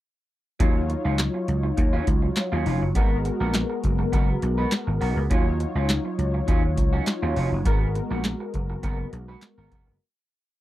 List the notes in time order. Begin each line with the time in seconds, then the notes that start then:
0.59 D#2 F#3 C#4 D#4 F4 C#5, kick, closed hi-hat
0.75 muted clean electric guitar stroke
0.89 muted clean electric guitar stroke, closed hi-hat
1.05 C#2 F#3 C#4 F4
1.18 muted clean electric guitar stroke, snare, clap, closed hi-hat
1.34 muted clean electric guitar stroke
1.48 C#2, closed hi-hat
1.63 muted clean electric guitar stroke
1.77 D#2, muted clean electric guitar stroke, kick, closed hi-hat
1.93 F#3 C#4 F4
2.07 C#2, muted clean electric guitar stroke, kick, closed hi-hat
2.22 muted clean electric guitar stroke
2.36 muted clean electric guitar stroke, snare, clap, closed hi-hat
2.52 D#2 F#3 C#4 F4
2.66 F1 F#3 C#4 F4, open hi-hat
2.82 F#1, muted clean electric guitar stroke
2.94 G#1 G#3 B3 F#4 A#4, kick, closed hi-hat
3.11 muted clean electric guitar stroke
3.25 muted clean electric guitar stroke, closed hi-hat
3.40 A#1 B3 F#4 A#4
3.54 muted clean electric guitar stroke, snare, clap, closed hi-hat
3.70 muted clean electric guitar stroke
3.84 F#1, kick, closed hi-hat
3.99 muted clean electric guitar stroke
4.13 F#1 B3 F#4 A#4, kick, closed hi-hat
4.29 muted clean electric guitar stroke
4.42 B1, muted clean electric guitar stroke, closed hi-hat
4.58 B3 F#4 B4
4.72 muted clean electric guitar stroke, snare, clap, closed hi-hat
4.87 G#1, muted clean electric guitar stroke
5.01 B1 B3 F#4 A#4, open hi-hat
5.16 C#2, muted clean electric guitar stroke
5.30 D#2 F#3 C#4 D#4 F4 C#5, kick, closed hi-hat
5.46 muted clean electric guitar stroke
5.60 muted clean electric guitar stroke, closed hi-hat
5.75 C#2 F#3 C#4 F4
5.89 muted clean electric guitar stroke, snare, clap, closed hi-hat
6.05 muted clean electric guitar stroke
6.18 C#2, closed hi-hat
6.34 muted clean electric guitar stroke
6.48 D#2 F#3 C#4 F4, kick, closed hi-hat
6.64 muted clean electric guitar stroke
6.77 C#2, muted clean electric guitar stroke, kick, closed hi-hat
6.93 F#3 C#4 F#4
7.07 muted clean electric guitar stroke, snare, clap, closed hi-hat
7.22 D#2 F#3 C#4 F4
7.36 F1 F#3 C#4 F4, open hi-hat
7.52 F#1, muted clean electric guitar stroke
7.65 G#1 G#3 B3 F#4 A#4, kick, closed hi-hat
7.81 muted clean electric guitar stroke
7.95 muted clean electric guitar stroke, closed hi-hat
8.11 A#1 B3 F#4 A#4
8.24 muted clean electric guitar stroke, snare, clap, closed hi-hat
8.40 muted clean electric guitar stroke
8.54 F#1, kick, closed hi-hat
8.70 muted clean electric guitar stroke
8.83 F#1 B3 F#4 A#4, kick, closed hi-hat
8.99 muted clean electric guitar stroke
9.13 B1, muted clean electric guitar stroke, closed hi-hat
9.28 B3 F#4 B4
9.42 muted clean electric guitar stroke, snare, clap, closed hi-hat
9.58 G#1 B3 F#4 A#4
9.71 F1 B3 F#4 A#4, kick, closed hi-hat
9.87 F#1, muted clean electric guitar stroke